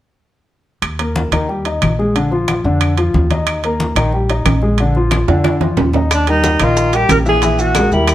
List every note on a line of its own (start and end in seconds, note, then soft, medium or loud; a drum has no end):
0.82 1.28 D#2 medium
0.82 high conga soft
0.82 high timbale medium
0.82 claves soft
0.99 1.26 A#3 medium
0.99 1.27 A#4 medium
0.99 high conga soft
0.99 high timbale medium
1.16 high conga medium
1.32 1.78 D#2 medium
1.32 1.46 D#3 medium
1.32 1.46 D#4 medium
1.32 high conga soft
1.32 high timbale medium
1.32 claves soft
1.49 1.62 G3 medium
1.49 1.62 G4 medium
1.49 high conga soft
1.65 1.93 D#4 medium
1.65 1.93 D#5 medium
1.65 high conga soft
1.65 high timbale medium
1.82 2.59 A#1 medium
1.82 high conga medium
1.82 high timbale medium
1.82 claves medium
1.99 2.12 G#3 medium
1.99 2.12 G#4 medium
1.99 high conga soft
2.15 2.29 D3 medium
2.15 2.29 D4 medium
2.15 high conga soft
2.15 high timbale medium
2.31 2.59 F3 medium
2.31 2.59 F4 medium
2.31 high conga soft
2.48 high conga medium
2.48 high timbale medium
2.48 claves medium
2.64 3.10 F2 medium
2.64 2.92 D3 medium
2.64 2.92 D4 medium
2.64 high conga soft
2.81 high conga soft
2.81 high timbale medium
2.81 claves medium
2.98 3.25 F3 medium
2.98 3.25 F4 medium
2.98 high conga soft
2.98 high timbale medium
3.14 3.91 D#2 medium
3.14 high conga medium
3.30 3.58 D#4 medium
3.30 3.58 D#5 medium
3.30 high conga medium
3.30 high timbale medium
3.47 high conga soft
3.47 high timbale medium
3.47 claves medium
3.63 3.91 A#3 medium
3.63 3.91 A#4 medium
3.63 high conga soft
3.63 high timbale medium
3.80 high conga medium
3.95 4.42 A#1 medium
3.95 4.10 D#3 medium
3.95 4.10 D#4 medium
3.95 high conga soft
3.95 high timbale medium
3.95 claves medium
4.13 4.27 G3 medium
4.13 4.27 G4 medium
4.13 high conga soft
4.29 4.57 D#4 medium
4.29 4.57 D#5 medium
4.29 high conga soft
4.29 high timbale medium
4.45 5.22 A#1 medium
4.45 high conga medium
4.45 high timbale medium
4.45 low timbale medium
4.45 claves medium
4.62 4.76 G#3 medium
4.62 4.76 G#4 medium
4.62 high conga soft
4.78 4.93 D3 medium
4.78 4.93 D4 medium
4.78 high conga soft
4.78 high timbale medium
4.95 5.23 F3 medium
4.95 5.23 F4 medium
4.95 high conga soft
5.11 high conga medium
5.11 high timbale medium
5.11 claves medium
5.28 5.74 F2 medium
5.28 5.55 D3 medium
5.28 5.56 D4 medium
5.28 high conga soft
5.28 high timbale medium
5.44 high conga medium
5.44 high timbale medium
5.44 claves medium
5.61 5.89 F3 medium
5.61 5.89 F4 medium
5.61 high conga medium
5.61 high timbale medium
5.77 6.55 D#2 medium
5.77 low conga medium
5.77 low timbale medium
5.93 6.09 D#4 medium
5.93 6.09 D#5 medium
5.93 low conga medium
5.93 low timbale medium
6.10 6.28 D4 medium
6.10 high bongo medium
6.10 high conga soft
6.10 high timbale medium
6.10 claves medium
6.10 maracas medium
6.27 6.55 G3 medium
6.27 6.65 D#4 medium
6.27 6.55 G4 medium
6.27 6.55 A#4 medium
6.27 high bongo soft
6.27 high conga soft
6.27 high timbale medium
6.44 high bongo medium
6.44 high conga medium
6.44 maracas medium
6.60 7.06 A#1 medium
6.60 6.88 D#3 medium
6.60 6.88 D#4 medium
6.60 6.97 F4 medium
6.60 6.88 D#5 medium
6.60 high bongo soft
6.60 high conga soft
6.60 high timbale medium
6.60 claves soft
6.60 maracas soft
6.77 high bongo medium
6.77 high conga soft
6.77 maracas medium
6.93 7.20 G3 medium
6.93 7.21 G4 medium
6.93 7.11 G4 medium
6.93 7.21 A#4 medium
6.93 high bongo soft
6.93 high conga soft
6.93 high timbale medium
6.93 maracas medium
7.09 7.86 A#1 medium
7.09 7.18 A#4 medium
7.09 high bongo soft
7.09 low bongo medium
7.09 high conga medium
7.09 high timbale medium
7.09 low timbale medium
7.09 claves medium
7.09 maracas medium
7.26 7.39 E3 medium
7.26 7.39 E4 medium
7.26 7.61 G#4 medium
7.26 7.40 E5 medium
7.26 high conga soft
7.26 maracas soft
7.42 7.70 E3 medium
7.42 7.70 E4 medium
7.42 7.70 E5 medium
7.42 high bongo medium
7.42 high conga soft
7.42 high timbale medium
7.42 maracas medium
7.58 7.92 F#4 medium
7.58 high bongo soft
7.58 high conga soft
7.58 maracas medium
7.75 7.90 G#3 medium
7.75 7.90 G#4 medium
7.75 7.90 A#4 medium
7.75 high bongo medium
7.75 high conga medium
7.75 high timbale medium
7.75 claves medium
7.75 maracas medium
7.91 8.15 D#2 medium
7.91 8.15 G3 medium
7.91 8.15 E4 medium
7.91 8.15 G4 medium
7.91 8.15 A#4 medium
7.91 high bongo soft
7.91 high conga soft
7.91 maracas soft
8.08 high bongo medium
8.08 high conga soft
8.08 high timbale medium
8.08 claves medium
8.08 maracas medium